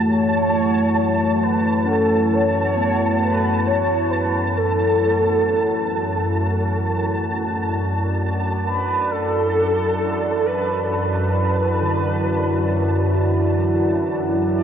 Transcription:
0, 0, Header, 1, 6, 480
1, 0, Start_track
1, 0, Tempo, 896861
1, 36, Time_signature, 4, 2, 24, 8
1, 2436, Tempo, 910470
1, 5796, Tempo, 894188
1, 7786, End_track
2, 0, Start_track
2, 0, Title_t, "Synth texture"
2, 0, Program_c, 0, 99
2, 0, Note_on_c, 0, 81, 75
2, 7786, Note_off_c, 0, 81, 0
2, 7786, End_track
3, 0, Start_track
3, 0, Title_t, "Soft synth lead"
3, 0, Program_c, 1, 80
3, 34, Note_on_c, 1, 73, 123
3, 765, Note_on_c, 1, 71, 92
3, 773, Note_off_c, 1, 73, 0
3, 1005, Note_on_c, 1, 69, 98
3, 1013, Note_off_c, 1, 71, 0
3, 1247, Note_on_c, 1, 73, 126
3, 1255, Note_off_c, 1, 69, 0
3, 1720, Note_off_c, 1, 73, 0
3, 1726, Note_on_c, 1, 71, 94
3, 1962, Note_on_c, 1, 73, 100
3, 1970, Note_off_c, 1, 71, 0
3, 2195, Note_on_c, 1, 71, 89
3, 2203, Note_off_c, 1, 73, 0
3, 2444, Note_on_c, 1, 69, 101
3, 2452, Note_off_c, 1, 71, 0
3, 3403, Note_off_c, 1, 69, 0
3, 4599, Note_on_c, 1, 71, 96
3, 4838, Note_on_c, 1, 69, 127
3, 4846, Note_off_c, 1, 71, 0
3, 5551, Note_on_c, 1, 71, 102
3, 5558, Note_off_c, 1, 69, 0
3, 5783, Note_off_c, 1, 71, 0
3, 5786, Note_on_c, 1, 71, 96
3, 7446, Note_off_c, 1, 71, 0
3, 7725, Note_on_c, 1, 74, 122
3, 7786, Note_off_c, 1, 74, 0
3, 7786, End_track
4, 0, Start_track
4, 0, Title_t, "Ambient pad"
4, 0, Program_c, 2, 92
4, 0, Note_on_c, 2, 57, 55
4, 0, Note_on_c, 2, 64, 74
4, 0, Note_on_c, 2, 78, 72
4, 3879, Note_on_c, 2, 74, 57
4, 3882, Note_off_c, 2, 57, 0
4, 3884, Note_off_c, 2, 78, 0
4, 3885, Note_off_c, 2, 64, 0
4, 4591, Note_on_c, 2, 64, 79
4, 5771, Note_on_c, 2, 66, 75
4, 7786, Note_off_c, 2, 64, 0
4, 7786, Note_off_c, 2, 66, 0
4, 7786, Note_off_c, 2, 74, 0
4, 7786, End_track
5, 0, Start_track
5, 0, Title_t, "Bronze metallophone"
5, 0, Program_c, 3, 11
5, 992, Note_on_c, 3, 61, 81
5, 1475, Note_on_c, 3, 59, 71
5, 1568, Note_off_c, 3, 61, 0
5, 4363, Note_off_c, 3, 59, 0
5, 6273, Note_on_c, 3, 50, 47
5, 6987, Note_on_c, 3, 66, 61
5, 7786, Note_off_c, 3, 50, 0
5, 7786, Note_off_c, 3, 66, 0
5, 7786, End_track
6, 0, Start_track
6, 0, Title_t, "Synth drone"
6, 0, Program_c, 4, 95
6, 0, Note_on_c, 4, 42, 75
6, 7786, Note_off_c, 4, 42, 0
6, 7786, End_track
0, 0, End_of_file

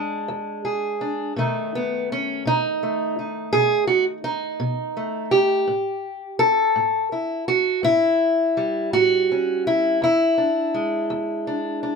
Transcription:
0, 0, Header, 1, 2, 480
1, 0, Start_track
1, 0, Tempo, 719424
1, 911, Time_signature, 12, 3, 24, 8
1, 7976, End_track
2, 0, Start_track
2, 0, Title_t, "Steel-string acoustic guitar"
2, 0, Program_c, 0, 25
2, 0, Note_on_c, 0, 56, 55
2, 0, Note_on_c, 0, 62, 61
2, 0, Note_on_c, 0, 68, 55
2, 189, Note_on_c, 0, 40, 78
2, 424, Note_off_c, 0, 68, 0
2, 432, Note_on_c, 0, 68, 55
2, 622, Note_off_c, 0, 40, 0
2, 666, Note_off_c, 0, 62, 0
2, 674, Note_on_c, 0, 62, 55
2, 882, Note_off_c, 0, 68, 0
2, 883, Note_off_c, 0, 62, 0
2, 884, Note_off_c, 0, 56, 0
2, 910, Note_on_c, 0, 47, 70
2, 914, Note_on_c, 0, 51, 43
2, 924, Note_on_c, 0, 57, 47
2, 928, Note_on_c, 0, 63, 52
2, 1159, Note_off_c, 0, 63, 0
2, 1170, Note_on_c, 0, 59, 75
2, 1341, Note_off_c, 0, 47, 0
2, 1399, Note_off_c, 0, 59, 0
2, 1415, Note_on_c, 0, 61, 84
2, 1638, Note_on_c, 0, 47, 64
2, 1642, Note_off_c, 0, 61, 0
2, 1650, Note_on_c, 0, 63, 93
2, 1884, Note_off_c, 0, 57, 0
2, 1887, Note_on_c, 0, 57, 44
2, 2065, Note_off_c, 0, 47, 0
2, 2118, Note_off_c, 0, 63, 0
2, 2127, Note_on_c, 0, 63, 40
2, 2352, Note_on_c, 0, 68, 113
2, 2353, Note_on_c, 0, 47, 67
2, 2582, Note_off_c, 0, 68, 0
2, 2585, Note_on_c, 0, 66, 84
2, 2692, Note_off_c, 0, 66, 0
2, 2782, Note_off_c, 0, 47, 0
2, 2821, Note_off_c, 0, 63, 0
2, 2829, Note_on_c, 0, 63, 76
2, 3067, Note_on_c, 0, 47, 71
2, 3306, Note_off_c, 0, 57, 0
2, 3314, Note_on_c, 0, 57, 47
2, 3499, Note_off_c, 0, 47, 0
2, 3545, Note_on_c, 0, 67, 82
2, 3760, Note_off_c, 0, 51, 0
2, 3762, Note_off_c, 0, 57, 0
2, 3786, Note_on_c, 0, 45, 74
2, 3788, Note_off_c, 0, 63, 0
2, 4219, Note_off_c, 0, 45, 0
2, 4262, Note_off_c, 0, 67, 0
2, 4264, Note_on_c, 0, 69, 100
2, 4509, Note_on_c, 0, 45, 65
2, 4747, Note_off_c, 0, 69, 0
2, 4752, Note_on_c, 0, 64, 46
2, 4941, Note_off_c, 0, 45, 0
2, 4988, Note_off_c, 0, 64, 0
2, 4990, Note_on_c, 0, 66, 91
2, 5224, Note_on_c, 0, 45, 72
2, 5230, Note_off_c, 0, 66, 0
2, 5233, Note_on_c, 0, 64, 108
2, 5660, Note_off_c, 0, 45, 0
2, 5718, Note_on_c, 0, 55, 47
2, 5953, Note_off_c, 0, 64, 0
2, 5959, Note_on_c, 0, 45, 73
2, 5960, Note_on_c, 0, 66, 107
2, 6215, Note_on_c, 0, 61, 44
2, 6388, Note_off_c, 0, 45, 0
2, 6436, Note_off_c, 0, 66, 0
2, 6451, Note_on_c, 0, 64, 86
2, 6656, Note_off_c, 0, 61, 0
2, 6677, Note_off_c, 0, 55, 0
2, 6682, Note_off_c, 0, 64, 0
2, 6685, Note_on_c, 0, 40, 70
2, 6696, Note_on_c, 0, 64, 89
2, 6924, Note_on_c, 0, 62, 46
2, 7112, Note_off_c, 0, 40, 0
2, 7168, Note_on_c, 0, 56, 46
2, 7407, Note_on_c, 0, 40, 73
2, 7652, Note_off_c, 0, 62, 0
2, 7654, Note_on_c, 0, 62, 48
2, 7834, Note_off_c, 0, 40, 0
2, 7890, Note_off_c, 0, 62, 0
2, 7892, Note_on_c, 0, 62, 49
2, 7976, Note_off_c, 0, 56, 0
2, 7976, Note_off_c, 0, 62, 0
2, 7976, Note_off_c, 0, 64, 0
2, 7976, End_track
0, 0, End_of_file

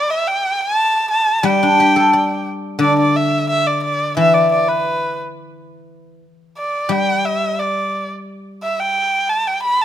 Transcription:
0, 0, Header, 1, 3, 480
1, 0, Start_track
1, 0, Tempo, 674157
1, 73, Time_signature, 2, 2, 24, 8
1, 1512, Tempo, 684932
1, 6926, End_track
2, 0, Start_track
2, 0, Title_t, "Erhu"
2, 0, Program_c, 0, 110
2, 0, Note_on_c, 0, 74, 98
2, 75, Note_on_c, 0, 76, 95
2, 86, Note_off_c, 0, 74, 0
2, 194, Note_on_c, 0, 79, 94
2, 205, Note_off_c, 0, 76, 0
2, 434, Note_on_c, 0, 81, 112
2, 444, Note_off_c, 0, 79, 0
2, 786, Note_off_c, 0, 81, 0
2, 791, Note_on_c, 0, 81, 100
2, 1033, Note_on_c, 0, 79, 95
2, 1044, Note_off_c, 0, 81, 0
2, 1756, Note_off_c, 0, 79, 0
2, 1991, Note_on_c, 0, 74, 82
2, 2106, Note_off_c, 0, 74, 0
2, 2121, Note_on_c, 0, 74, 79
2, 2239, Note_on_c, 0, 76, 81
2, 2250, Note_off_c, 0, 74, 0
2, 2472, Note_off_c, 0, 76, 0
2, 2477, Note_on_c, 0, 76, 93
2, 2595, Note_on_c, 0, 74, 78
2, 2605, Note_off_c, 0, 76, 0
2, 2706, Note_off_c, 0, 74, 0
2, 2710, Note_on_c, 0, 74, 80
2, 2936, Note_off_c, 0, 74, 0
2, 2949, Note_on_c, 0, 76, 82
2, 3064, Note_on_c, 0, 74, 75
2, 3075, Note_off_c, 0, 76, 0
2, 3188, Note_off_c, 0, 74, 0
2, 3192, Note_on_c, 0, 74, 74
2, 3307, Note_on_c, 0, 71, 70
2, 3318, Note_off_c, 0, 74, 0
2, 3668, Note_off_c, 0, 71, 0
2, 4633, Note_on_c, 0, 74, 73
2, 4871, Note_on_c, 0, 79, 83
2, 4882, Note_off_c, 0, 74, 0
2, 5105, Note_on_c, 0, 76, 80
2, 5116, Note_off_c, 0, 79, 0
2, 5343, Note_on_c, 0, 74, 66
2, 5354, Note_off_c, 0, 76, 0
2, 5704, Note_off_c, 0, 74, 0
2, 6070, Note_on_c, 0, 76, 72
2, 6191, Note_on_c, 0, 79, 84
2, 6201, Note_off_c, 0, 76, 0
2, 6536, Note_on_c, 0, 81, 84
2, 6547, Note_off_c, 0, 79, 0
2, 6661, Note_on_c, 0, 79, 79
2, 6672, Note_off_c, 0, 81, 0
2, 6767, Note_off_c, 0, 79, 0
2, 6772, Note_on_c, 0, 83, 92
2, 6903, Note_on_c, 0, 81, 85
2, 6914, Note_off_c, 0, 83, 0
2, 6926, Note_off_c, 0, 81, 0
2, 6926, End_track
3, 0, Start_track
3, 0, Title_t, "Guzheng"
3, 0, Program_c, 1, 107
3, 1020, Note_on_c, 1, 55, 70
3, 1159, Note_on_c, 1, 62, 48
3, 1281, Note_on_c, 1, 67, 50
3, 1396, Note_on_c, 1, 69, 50
3, 1519, Note_on_c, 1, 74, 51
3, 1977, Note_on_c, 1, 50, 58
3, 2122, Note_off_c, 1, 62, 0
3, 2243, Note_off_c, 1, 67, 0
3, 2360, Note_off_c, 1, 69, 0
3, 2473, Note_off_c, 1, 55, 0
3, 2480, Note_off_c, 1, 74, 0
3, 2944, Note_on_c, 1, 52, 55
3, 3425, Note_off_c, 1, 50, 0
3, 4380, Note_off_c, 1, 52, 0
3, 4852, Note_on_c, 1, 55, 57
3, 6305, Note_off_c, 1, 55, 0
3, 6926, End_track
0, 0, End_of_file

